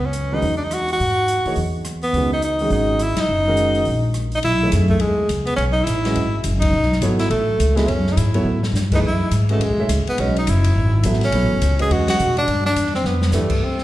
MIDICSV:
0, 0, Header, 1, 6, 480
1, 0, Start_track
1, 0, Tempo, 286944
1, 1659, Time_signature, 4, 2, 24, 8
1, 23148, End_track
2, 0, Start_track
2, 0, Title_t, "Grand piano"
2, 0, Program_c, 0, 0
2, 527, Note_on_c, 0, 51, 59
2, 530, Note_on_c, 0, 61, 58
2, 531, Note_on_c, 0, 56, 56
2, 541, Note_on_c, 0, 71, 72
2, 542, Note_on_c, 0, 66, 53
2, 687, Note_off_c, 0, 51, 0
2, 689, Note_off_c, 0, 56, 0
2, 689, Note_off_c, 0, 61, 0
2, 694, Note_off_c, 0, 71, 0
2, 695, Note_off_c, 0, 66, 0
2, 2431, Note_on_c, 0, 52, 56
2, 2444, Note_on_c, 0, 63, 53
2, 2445, Note_on_c, 0, 58, 52
2, 2446, Note_on_c, 0, 68, 49
2, 2458, Note_on_c, 0, 73, 62
2, 2599, Note_off_c, 0, 52, 0
2, 2606, Note_off_c, 0, 58, 0
2, 2606, Note_off_c, 0, 63, 0
2, 2607, Note_off_c, 0, 68, 0
2, 2613, Note_off_c, 0, 73, 0
2, 3587, Note_on_c, 0, 51, 55
2, 3593, Note_on_c, 0, 61, 51
2, 3596, Note_on_c, 0, 56, 48
2, 3605, Note_on_c, 0, 71, 57
2, 3607, Note_on_c, 0, 66, 49
2, 3849, Note_off_c, 0, 51, 0
2, 3852, Note_off_c, 0, 61, 0
2, 3854, Note_off_c, 0, 56, 0
2, 3858, Note_off_c, 0, 71, 0
2, 3859, Note_off_c, 0, 66, 0
2, 4368, Note_on_c, 0, 51, 61
2, 4371, Note_on_c, 0, 56, 50
2, 4371, Note_on_c, 0, 61, 54
2, 4379, Note_on_c, 0, 66, 56
2, 4382, Note_on_c, 0, 68, 63
2, 4989, Note_off_c, 0, 51, 0
2, 4991, Note_off_c, 0, 56, 0
2, 4991, Note_off_c, 0, 61, 0
2, 4995, Note_off_c, 0, 66, 0
2, 4996, Note_off_c, 0, 68, 0
2, 5806, Note_on_c, 0, 51, 65
2, 5808, Note_on_c, 0, 56, 65
2, 5817, Note_on_c, 0, 61, 61
2, 5820, Note_on_c, 0, 70, 77
2, 5824, Note_on_c, 0, 66, 62
2, 6428, Note_off_c, 0, 51, 0
2, 6430, Note_off_c, 0, 56, 0
2, 6434, Note_off_c, 0, 61, 0
2, 6436, Note_off_c, 0, 70, 0
2, 6438, Note_off_c, 0, 66, 0
2, 7745, Note_on_c, 0, 57, 66
2, 7749, Note_on_c, 0, 51, 55
2, 7753, Note_on_c, 0, 68, 56
2, 7756, Note_on_c, 0, 73, 60
2, 7759, Note_on_c, 0, 76, 67
2, 8358, Note_off_c, 0, 57, 0
2, 8360, Note_off_c, 0, 51, 0
2, 8362, Note_off_c, 0, 68, 0
2, 8364, Note_off_c, 0, 73, 0
2, 8366, Note_off_c, 0, 76, 0
2, 10122, Note_on_c, 0, 56, 63
2, 10122, Note_on_c, 0, 66, 59
2, 10125, Note_on_c, 0, 61, 59
2, 10137, Note_on_c, 0, 75, 72
2, 10139, Note_on_c, 0, 71, 59
2, 10285, Note_off_c, 0, 56, 0
2, 10286, Note_off_c, 0, 66, 0
2, 10287, Note_off_c, 0, 61, 0
2, 10293, Note_off_c, 0, 75, 0
2, 10294, Note_off_c, 0, 71, 0
2, 11738, Note_on_c, 0, 54, 70
2, 11738, Note_on_c, 0, 59, 64
2, 11750, Note_on_c, 0, 73, 83
2, 11751, Note_on_c, 0, 69, 65
2, 11752, Note_on_c, 0, 64, 64
2, 12006, Note_off_c, 0, 59, 0
2, 12007, Note_off_c, 0, 54, 0
2, 12012, Note_off_c, 0, 73, 0
2, 12013, Note_off_c, 0, 64, 0
2, 12013, Note_off_c, 0, 69, 0
2, 12983, Note_on_c, 0, 59, 58
2, 12986, Note_on_c, 0, 54, 63
2, 12993, Note_on_c, 0, 64, 61
2, 12998, Note_on_c, 0, 69, 60
2, 13006, Note_on_c, 0, 76, 70
2, 13157, Note_off_c, 0, 59, 0
2, 13159, Note_off_c, 0, 54, 0
2, 13162, Note_off_c, 0, 64, 0
2, 13165, Note_off_c, 0, 69, 0
2, 13169, Note_off_c, 0, 76, 0
2, 13952, Note_on_c, 0, 54, 64
2, 13961, Note_on_c, 0, 64, 58
2, 13965, Note_on_c, 0, 59, 65
2, 13966, Note_on_c, 0, 69, 58
2, 13970, Note_on_c, 0, 73, 78
2, 14122, Note_off_c, 0, 54, 0
2, 14126, Note_off_c, 0, 64, 0
2, 14128, Note_off_c, 0, 59, 0
2, 14129, Note_off_c, 0, 69, 0
2, 14131, Note_off_c, 0, 73, 0
2, 14926, Note_on_c, 0, 57, 64
2, 14930, Note_on_c, 0, 52, 66
2, 14934, Note_on_c, 0, 63, 67
2, 14941, Note_on_c, 0, 68, 67
2, 14944, Note_on_c, 0, 71, 82
2, 15089, Note_off_c, 0, 57, 0
2, 15091, Note_off_c, 0, 52, 0
2, 15093, Note_off_c, 0, 63, 0
2, 15097, Note_off_c, 0, 68, 0
2, 15099, Note_off_c, 0, 71, 0
2, 15883, Note_on_c, 0, 56, 64
2, 15892, Note_on_c, 0, 61, 56
2, 15892, Note_on_c, 0, 66, 53
2, 15900, Note_on_c, 0, 71, 55
2, 15906, Note_on_c, 0, 75, 67
2, 16048, Note_off_c, 0, 56, 0
2, 16053, Note_off_c, 0, 61, 0
2, 16053, Note_off_c, 0, 66, 0
2, 16057, Note_off_c, 0, 71, 0
2, 16060, Note_off_c, 0, 75, 0
2, 16379, Note_on_c, 0, 63, 59
2, 16380, Note_on_c, 0, 57, 63
2, 16386, Note_on_c, 0, 68, 59
2, 16393, Note_on_c, 0, 76, 72
2, 16394, Note_on_c, 0, 73, 55
2, 16536, Note_off_c, 0, 63, 0
2, 16537, Note_off_c, 0, 57, 0
2, 16540, Note_off_c, 0, 68, 0
2, 16543, Note_off_c, 0, 76, 0
2, 16544, Note_off_c, 0, 73, 0
2, 17040, Note_on_c, 0, 56, 58
2, 17051, Note_on_c, 0, 61, 55
2, 17053, Note_on_c, 0, 66, 58
2, 17059, Note_on_c, 0, 75, 67
2, 17063, Note_on_c, 0, 71, 55
2, 17299, Note_off_c, 0, 56, 0
2, 17305, Note_off_c, 0, 61, 0
2, 17306, Note_off_c, 0, 66, 0
2, 17309, Note_off_c, 0, 75, 0
2, 17311, Note_off_c, 0, 71, 0
2, 18471, Note_on_c, 0, 54, 64
2, 18484, Note_on_c, 0, 59, 56
2, 18489, Note_on_c, 0, 64, 57
2, 18498, Note_on_c, 0, 69, 58
2, 18502, Note_on_c, 0, 76, 66
2, 18735, Note_off_c, 0, 54, 0
2, 18741, Note_off_c, 0, 59, 0
2, 18743, Note_off_c, 0, 64, 0
2, 18748, Note_off_c, 0, 69, 0
2, 18750, Note_off_c, 0, 76, 0
2, 18969, Note_on_c, 0, 54, 58
2, 18969, Note_on_c, 0, 59, 54
2, 18977, Note_on_c, 0, 64, 52
2, 18980, Note_on_c, 0, 73, 65
2, 18983, Note_on_c, 0, 69, 53
2, 19223, Note_off_c, 0, 59, 0
2, 19224, Note_off_c, 0, 54, 0
2, 19227, Note_off_c, 0, 64, 0
2, 19229, Note_off_c, 0, 73, 0
2, 19231, Note_off_c, 0, 69, 0
2, 19729, Note_on_c, 0, 56, 67
2, 19730, Note_on_c, 0, 61, 59
2, 19731, Note_on_c, 0, 66, 61
2, 19741, Note_on_c, 0, 71, 61
2, 19743, Note_on_c, 0, 75, 71
2, 20353, Note_off_c, 0, 56, 0
2, 20353, Note_off_c, 0, 61, 0
2, 20354, Note_off_c, 0, 66, 0
2, 20358, Note_off_c, 0, 71, 0
2, 20359, Note_off_c, 0, 75, 0
2, 22302, Note_on_c, 0, 52, 55
2, 22310, Note_on_c, 0, 57, 51
2, 22311, Note_on_c, 0, 67, 52
2, 22313, Note_on_c, 0, 71, 63
2, 22315, Note_on_c, 0, 62, 56
2, 22569, Note_off_c, 0, 52, 0
2, 22573, Note_off_c, 0, 57, 0
2, 22574, Note_off_c, 0, 67, 0
2, 22575, Note_off_c, 0, 71, 0
2, 22576, Note_off_c, 0, 62, 0
2, 23148, End_track
3, 0, Start_track
3, 0, Title_t, "Tenor saxophone"
3, 0, Program_c, 1, 66
3, 87, Note_on_c, 1, 61, 79
3, 563, Note_on_c, 1, 63, 84
3, 588, Note_off_c, 1, 61, 0
3, 941, Note_off_c, 1, 63, 0
3, 951, Note_on_c, 1, 62, 62
3, 1066, Note_on_c, 1, 63, 73
3, 1092, Note_off_c, 1, 62, 0
3, 1228, Note_on_c, 1, 66, 98
3, 1253, Note_off_c, 1, 63, 0
3, 1499, Note_off_c, 1, 66, 0
3, 1548, Note_on_c, 1, 66, 102
3, 2885, Note_off_c, 1, 66, 0
3, 3394, Note_on_c, 1, 59, 89
3, 3841, Note_off_c, 1, 59, 0
3, 3894, Note_on_c, 1, 63, 84
3, 4057, Note_off_c, 1, 63, 0
3, 4082, Note_on_c, 1, 63, 82
3, 4518, Note_off_c, 1, 63, 0
3, 4551, Note_on_c, 1, 63, 87
3, 5056, Note_on_c, 1, 64, 98
3, 5081, Note_off_c, 1, 63, 0
3, 5360, Note_on_c, 1, 63, 98
3, 5385, Note_off_c, 1, 64, 0
3, 6963, Note_off_c, 1, 63, 0
3, 7268, Note_on_c, 1, 63, 93
3, 7344, Note_off_c, 1, 63, 0
3, 7430, Note_on_c, 1, 64, 100
3, 7872, Note_off_c, 1, 64, 0
3, 8188, Note_on_c, 1, 57, 86
3, 8366, Note_on_c, 1, 56, 77
3, 8391, Note_off_c, 1, 57, 0
3, 8853, Note_off_c, 1, 56, 0
3, 9135, Note_on_c, 1, 59, 94
3, 9292, Note_off_c, 1, 59, 0
3, 9302, Note_on_c, 1, 61, 82
3, 9444, Note_off_c, 1, 61, 0
3, 9572, Note_on_c, 1, 63, 94
3, 9762, Note_on_c, 1, 64, 95
3, 9788, Note_off_c, 1, 63, 0
3, 10752, Note_off_c, 1, 64, 0
3, 11032, Note_on_c, 1, 63, 99
3, 11671, Note_off_c, 1, 63, 0
3, 12029, Note_on_c, 1, 64, 85
3, 12205, Note_off_c, 1, 64, 0
3, 12213, Note_on_c, 1, 57, 86
3, 12972, Note_on_c, 1, 56, 81
3, 12997, Note_off_c, 1, 57, 0
3, 13176, Note_on_c, 1, 61, 90
3, 13201, Note_off_c, 1, 56, 0
3, 13582, Note_on_c, 1, 63, 61
3, 13607, Note_off_c, 1, 61, 0
3, 13664, Note_on_c, 1, 64, 75
3, 13689, Note_off_c, 1, 63, 0
3, 14440, Note_off_c, 1, 64, 0
3, 14968, Note_on_c, 1, 63, 78
3, 15040, Note_off_c, 1, 63, 0
3, 15162, Note_on_c, 1, 64, 80
3, 15582, Note_off_c, 1, 64, 0
3, 15917, Note_on_c, 1, 57, 72
3, 16106, Note_on_c, 1, 56, 75
3, 16131, Note_off_c, 1, 57, 0
3, 16566, Note_off_c, 1, 56, 0
3, 16873, Note_on_c, 1, 59, 88
3, 17057, Note_on_c, 1, 61, 82
3, 17082, Note_off_c, 1, 59, 0
3, 17337, Note_off_c, 1, 61, 0
3, 17370, Note_on_c, 1, 63, 82
3, 17553, Note_on_c, 1, 64, 79
3, 17578, Note_off_c, 1, 63, 0
3, 18489, Note_off_c, 1, 64, 0
3, 18809, Note_on_c, 1, 61, 103
3, 19680, Note_off_c, 1, 61, 0
3, 19766, Note_on_c, 1, 68, 99
3, 19938, Note_on_c, 1, 66, 95
3, 19964, Note_off_c, 1, 68, 0
3, 20218, Note_off_c, 1, 66, 0
3, 20232, Note_on_c, 1, 66, 95
3, 20664, Note_off_c, 1, 66, 0
3, 20711, Note_on_c, 1, 62, 102
3, 21143, Note_off_c, 1, 62, 0
3, 21178, Note_on_c, 1, 62, 90
3, 21616, Note_off_c, 1, 62, 0
3, 21662, Note_on_c, 1, 60, 86
3, 21838, Note_on_c, 1, 59, 75
3, 21863, Note_off_c, 1, 60, 0
3, 22297, Note_off_c, 1, 59, 0
3, 22307, Note_on_c, 1, 57, 78
3, 22806, Note_on_c, 1, 60, 85
3, 22831, Note_off_c, 1, 57, 0
3, 23148, Note_off_c, 1, 60, 0
3, 23148, End_track
4, 0, Start_track
4, 0, Title_t, "Upright bass"
4, 0, Program_c, 2, 32
4, 0, Note_on_c, 2, 37, 75
4, 656, Note_off_c, 2, 37, 0
4, 707, Note_on_c, 2, 40, 80
4, 1616, Note_off_c, 2, 40, 0
4, 1677, Note_on_c, 2, 44, 74
4, 2390, Note_off_c, 2, 44, 0
4, 2617, Note_on_c, 2, 40, 77
4, 3530, Note_off_c, 2, 40, 0
4, 3568, Note_on_c, 2, 37, 78
4, 4486, Note_off_c, 2, 37, 0
4, 4522, Note_on_c, 2, 32, 86
4, 5252, Note_off_c, 2, 32, 0
4, 5496, Note_on_c, 2, 30, 74
4, 6410, Note_off_c, 2, 30, 0
4, 6469, Note_on_c, 2, 34, 81
4, 7377, Note_off_c, 2, 34, 0
4, 7441, Note_on_c, 2, 35, 79
4, 7897, Note_off_c, 2, 35, 0
4, 7907, Note_on_c, 2, 42, 79
4, 8370, Note_off_c, 2, 42, 0
4, 8385, Note_on_c, 2, 40, 77
4, 8848, Note_off_c, 2, 40, 0
4, 8863, Note_on_c, 2, 37, 86
4, 9317, Note_off_c, 2, 37, 0
4, 9328, Note_on_c, 2, 35, 73
4, 9800, Note_off_c, 2, 35, 0
4, 9817, Note_on_c, 2, 33, 83
4, 10285, Note_off_c, 2, 33, 0
4, 10309, Note_on_c, 2, 32, 81
4, 10767, Note_off_c, 2, 32, 0
4, 10777, Note_on_c, 2, 30, 85
4, 11245, Note_off_c, 2, 30, 0
4, 11256, Note_on_c, 2, 35, 76
4, 11725, Note_off_c, 2, 35, 0
4, 11732, Note_on_c, 2, 32, 85
4, 12203, Note_off_c, 2, 32, 0
4, 12210, Note_on_c, 2, 33, 85
4, 12682, Note_off_c, 2, 33, 0
4, 12706, Note_on_c, 2, 37, 89
4, 13171, Note_off_c, 2, 37, 0
4, 13180, Note_on_c, 2, 42, 74
4, 13648, Note_off_c, 2, 42, 0
4, 13669, Note_on_c, 2, 44, 84
4, 14118, Note_off_c, 2, 44, 0
4, 14128, Note_on_c, 2, 45, 80
4, 14592, Note_off_c, 2, 45, 0
4, 14602, Note_on_c, 2, 43, 90
4, 15079, Note_off_c, 2, 43, 0
4, 15099, Note_on_c, 2, 42, 74
4, 15568, Note_off_c, 2, 42, 0
4, 15577, Note_on_c, 2, 44, 82
4, 16032, Note_off_c, 2, 44, 0
4, 16042, Note_on_c, 2, 40, 79
4, 16209, Note_off_c, 2, 40, 0
4, 16209, Note_on_c, 2, 35, 51
4, 16356, Note_off_c, 2, 35, 0
4, 16366, Note_on_c, 2, 33, 59
4, 16524, Note_off_c, 2, 33, 0
4, 16538, Note_on_c, 2, 37, 90
4, 16817, Note_off_c, 2, 37, 0
4, 17039, Note_on_c, 2, 35, 75
4, 17499, Note_off_c, 2, 35, 0
4, 17524, Note_on_c, 2, 30, 87
4, 17981, Note_off_c, 2, 30, 0
4, 17992, Note_on_c, 2, 32, 89
4, 18455, Note_off_c, 2, 32, 0
4, 18466, Note_on_c, 2, 33, 90
4, 18932, Note_off_c, 2, 33, 0
4, 18943, Note_on_c, 2, 35, 79
4, 19106, Note_off_c, 2, 35, 0
4, 19106, Note_on_c, 2, 33, 54
4, 19266, Note_off_c, 2, 33, 0
4, 19283, Note_on_c, 2, 30, 69
4, 19418, Note_off_c, 2, 30, 0
4, 19428, Note_on_c, 2, 37, 90
4, 19893, Note_off_c, 2, 37, 0
4, 19911, Note_on_c, 2, 40, 80
4, 20374, Note_off_c, 2, 40, 0
4, 20403, Note_on_c, 2, 47, 93
4, 20860, Note_off_c, 2, 47, 0
4, 20876, Note_on_c, 2, 43, 83
4, 21328, Note_off_c, 2, 43, 0
4, 21338, Note_on_c, 2, 40, 88
4, 21802, Note_off_c, 2, 40, 0
4, 21812, Note_on_c, 2, 41, 78
4, 22284, Note_off_c, 2, 41, 0
4, 22294, Note_on_c, 2, 43, 85
4, 22764, Note_off_c, 2, 43, 0
4, 22774, Note_on_c, 2, 36, 71
4, 23148, Note_off_c, 2, 36, 0
4, 23148, End_track
5, 0, Start_track
5, 0, Title_t, "Muted upright bass strokes"
5, 2431, Note_on_c, 9, 29, 35
5, 2599, Note_off_c, 9, 29, 0
5, 5313, Note_on_c, 9, 29, 36
5, 5480, Note_off_c, 9, 29, 0
5, 16842, Note_on_c, 9, 29, 37
5, 17010, Note_off_c, 9, 29, 0
5, 23148, End_track
6, 0, Start_track
6, 0, Title_t, "Drums"
6, 218, Note_on_c, 9, 42, 49
6, 385, Note_off_c, 9, 42, 0
6, 705, Note_on_c, 9, 46, 38
6, 873, Note_off_c, 9, 46, 0
6, 1187, Note_on_c, 9, 37, 59
6, 1187, Note_on_c, 9, 42, 49
6, 1354, Note_off_c, 9, 37, 0
6, 1354, Note_off_c, 9, 42, 0
6, 1477, Note_on_c, 9, 46, 32
6, 1644, Note_off_c, 9, 46, 0
6, 1677, Note_on_c, 9, 46, 39
6, 1844, Note_off_c, 9, 46, 0
6, 2142, Note_on_c, 9, 42, 49
6, 2309, Note_off_c, 9, 42, 0
6, 2433, Note_on_c, 9, 46, 33
6, 2600, Note_off_c, 9, 46, 0
6, 2606, Note_on_c, 9, 46, 41
6, 2773, Note_off_c, 9, 46, 0
6, 3089, Note_on_c, 9, 37, 57
6, 3089, Note_on_c, 9, 42, 50
6, 3257, Note_off_c, 9, 37, 0
6, 3257, Note_off_c, 9, 42, 0
6, 3391, Note_on_c, 9, 46, 34
6, 3559, Note_off_c, 9, 46, 0
6, 3577, Note_on_c, 9, 46, 40
6, 3745, Note_off_c, 9, 46, 0
6, 4052, Note_on_c, 9, 42, 45
6, 4220, Note_off_c, 9, 42, 0
6, 4333, Note_on_c, 9, 46, 33
6, 4500, Note_off_c, 9, 46, 0
6, 4521, Note_on_c, 9, 46, 38
6, 4689, Note_off_c, 9, 46, 0
6, 5007, Note_on_c, 9, 37, 56
6, 5007, Note_on_c, 9, 42, 46
6, 5174, Note_off_c, 9, 37, 0
6, 5174, Note_off_c, 9, 42, 0
6, 5294, Note_on_c, 9, 38, 69
6, 5294, Note_on_c, 9, 51, 64
6, 5462, Note_off_c, 9, 38, 0
6, 5462, Note_off_c, 9, 51, 0
6, 5969, Note_on_c, 9, 42, 46
6, 6136, Note_off_c, 9, 42, 0
6, 6270, Note_on_c, 9, 46, 31
6, 6437, Note_off_c, 9, 46, 0
6, 6444, Note_on_c, 9, 46, 39
6, 6611, Note_off_c, 9, 46, 0
6, 6927, Note_on_c, 9, 37, 58
6, 6927, Note_on_c, 9, 42, 50
6, 7094, Note_off_c, 9, 37, 0
6, 7094, Note_off_c, 9, 42, 0
6, 7222, Note_on_c, 9, 46, 36
6, 7389, Note_off_c, 9, 46, 0
6, 7405, Note_on_c, 9, 51, 58
6, 7572, Note_off_c, 9, 51, 0
6, 7892, Note_on_c, 9, 38, 35
6, 7892, Note_on_c, 9, 44, 61
6, 7892, Note_on_c, 9, 51, 62
6, 8059, Note_off_c, 9, 38, 0
6, 8059, Note_off_c, 9, 44, 0
6, 8059, Note_off_c, 9, 51, 0
6, 8189, Note_on_c, 9, 36, 52
6, 8356, Note_off_c, 9, 36, 0
6, 8356, Note_on_c, 9, 51, 53
6, 8523, Note_off_c, 9, 51, 0
6, 8850, Note_on_c, 9, 44, 48
6, 8850, Note_on_c, 9, 51, 61
6, 9017, Note_off_c, 9, 44, 0
6, 9017, Note_off_c, 9, 51, 0
6, 9146, Note_on_c, 9, 51, 44
6, 9313, Note_off_c, 9, 51, 0
6, 9338, Note_on_c, 9, 51, 49
6, 9505, Note_off_c, 9, 51, 0
6, 9816, Note_on_c, 9, 44, 53
6, 9816, Note_on_c, 9, 51, 66
6, 9984, Note_off_c, 9, 44, 0
6, 9984, Note_off_c, 9, 51, 0
6, 10120, Note_on_c, 9, 38, 51
6, 10120, Note_on_c, 9, 51, 45
6, 10287, Note_off_c, 9, 38, 0
6, 10287, Note_off_c, 9, 51, 0
6, 10296, Note_on_c, 9, 51, 55
6, 10463, Note_off_c, 9, 51, 0
6, 10767, Note_on_c, 9, 44, 57
6, 10767, Note_on_c, 9, 51, 67
6, 10935, Note_off_c, 9, 44, 0
6, 10935, Note_off_c, 9, 51, 0
6, 11071, Note_on_c, 9, 36, 79
6, 11072, Note_on_c, 9, 51, 70
6, 11238, Note_off_c, 9, 36, 0
6, 11239, Note_off_c, 9, 51, 0
6, 11418, Note_on_c, 9, 38, 27
6, 11582, Note_off_c, 9, 38, 0
6, 11582, Note_on_c, 9, 38, 41
6, 11737, Note_on_c, 9, 44, 54
6, 11737, Note_on_c, 9, 51, 66
6, 11749, Note_off_c, 9, 38, 0
6, 11904, Note_off_c, 9, 44, 0
6, 11904, Note_off_c, 9, 51, 0
6, 12033, Note_on_c, 9, 38, 45
6, 12033, Note_on_c, 9, 51, 45
6, 12200, Note_off_c, 9, 38, 0
6, 12200, Note_off_c, 9, 51, 0
6, 12220, Note_on_c, 9, 51, 52
6, 12388, Note_off_c, 9, 51, 0
6, 12709, Note_on_c, 9, 44, 53
6, 12709, Note_on_c, 9, 51, 59
6, 12876, Note_off_c, 9, 44, 0
6, 12876, Note_off_c, 9, 51, 0
6, 13001, Note_on_c, 9, 38, 51
6, 13001, Note_on_c, 9, 51, 41
6, 13169, Note_off_c, 9, 38, 0
6, 13169, Note_off_c, 9, 51, 0
6, 13185, Note_on_c, 9, 51, 50
6, 13352, Note_off_c, 9, 51, 0
6, 13494, Note_on_c, 9, 38, 32
6, 13661, Note_off_c, 9, 38, 0
6, 13671, Note_on_c, 9, 44, 58
6, 13671, Note_on_c, 9, 51, 65
6, 13839, Note_off_c, 9, 44, 0
6, 13839, Note_off_c, 9, 51, 0
6, 13954, Note_on_c, 9, 51, 44
6, 14121, Note_off_c, 9, 51, 0
6, 14439, Note_on_c, 9, 38, 61
6, 14607, Note_off_c, 9, 38, 0
6, 14639, Note_on_c, 9, 38, 56
6, 14639, Note_on_c, 9, 44, 52
6, 14806, Note_off_c, 9, 38, 0
6, 14806, Note_off_c, 9, 44, 0
6, 14914, Note_on_c, 9, 36, 69
6, 14916, Note_on_c, 9, 49, 66
6, 15081, Note_off_c, 9, 36, 0
6, 15083, Note_off_c, 9, 49, 0
6, 15580, Note_on_c, 9, 44, 50
6, 15580, Note_on_c, 9, 51, 60
6, 15747, Note_off_c, 9, 44, 0
6, 15747, Note_off_c, 9, 51, 0
6, 15875, Note_on_c, 9, 51, 43
6, 16042, Note_off_c, 9, 51, 0
6, 16071, Note_on_c, 9, 51, 62
6, 16239, Note_off_c, 9, 51, 0
6, 16546, Note_on_c, 9, 44, 63
6, 16546, Note_on_c, 9, 51, 73
6, 16714, Note_off_c, 9, 44, 0
6, 16714, Note_off_c, 9, 51, 0
6, 16850, Note_on_c, 9, 51, 40
6, 17017, Note_off_c, 9, 51, 0
6, 17028, Note_on_c, 9, 51, 57
6, 17196, Note_off_c, 9, 51, 0
6, 17338, Note_on_c, 9, 51, 45
6, 17505, Note_off_c, 9, 51, 0
6, 17514, Note_on_c, 9, 44, 56
6, 17514, Note_on_c, 9, 51, 71
6, 17681, Note_off_c, 9, 44, 0
6, 17681, Note_off_c, 9, 51, 0
6, 17804, Note_on_c, 9, 51, 65
6, 17972, Note_off_c, 9, 51, 0
6, 18458, Note_on_c, 9, 44, 61
6, 18458, Note_on_c, 9, 51, 73
6, 18621, Note_on_c, 9, 38, 30
6, 18625, Note_off_c, 9, 44, 0
6, 18625, Note_off_c, 9, 51, 0
6, 18754, Note_on_c, 9, 51, 41
6, 18776, Note_off_c, 9, 38, 0
6, 18776, Note_on_c, 9, 38, 41
6, 18921, Note_off_c, 9, 51, 0
6, 18940, Note_on_c, 9, 51, 59
6, 18943, Note_off_c, 9, 38, 0
6, 19107, Note_off_c, 9, 51, 0
6, 19430, Note_on_c, 9, 44, 56
6, 19430, Note_on_c, 9, 51, 63
6, 19598, Note_off_c, 9, 44, 0
6, 19598, Note_off_c, 9, 51, 0
6, 19725, Note_on_c, 9, 51, 45
6, 19893, Note_off_c, 9, 51, 0
6, 19921, Note_on_c, 9, 51, 56
6, 20088, Note_off_c, 9, 51, 0
6, 20210, Note_on_c, 9, 38, 79
6, 20210, Note_on_c, 9, 51, 69
6, 20377, Note_off_c, 9, 38, 0
6, 20377, Note_off_c, 9, 51, 0
6, 20392, Note_on_c, 9, 44, 59
6, 20560, Note_off_c, 9, 44, 0
6, 20688, Note_on_c, 9, 51, 44
6, 20856, Note_off_c, 9, 51, 0
6, 20872, Note_on_c, 9, 51, 59
6, 21039, Note_off_c, 9, 51, 0
6, 21167, Note_on_c, 9, 38, 48
6, 21335, Note_off_c, 9, 38, 0
6, 21349, Note_on_c, 9, 44, 58
6, 21349, Note_on_c, 9, 51, 66
6, 21511, Note_on_c, 9, 38, 26
6, 21516, Note_off_c, 9, 44, 0
6, 21516, Note_off_c, 9, 51, 0
6, 21654, Note_off_c, 9, 38, 0
6, 21654, Note_on_c, 9, 38, 41
6, 21821, Note_off_c, 9, 38, 0
6, 21827, Note_on_c, 9, 38, 46
6, 21994, Note_off_c, 9, 38, 0
6, 22109, Note_on_c, 9, 38, 67
6, 22277, Note_off_c, 9, 38, 0
6, 22278, Note_on_c, 9, 38, 57
6, 22278, Note_on_c, 9, 44, 64
6, 22445, Note_off_c, 9, 38, 0
6, 22445, Note_off_c, 9, 44, 0
6, 22576, Note_on_c, 9, 49, 70
6, 22584, Note_on_c, 9, 36, 65
6, 22744, Note_off_c, 9, 49, 0
6, 22751, Note_off_c, 9, 36, 0
6, 23054, Note_on_c, 9, 38, 32
6, 23148, Note_off_c, 9, 38, 0
6, 23148, End_track
0, 0, End_of_file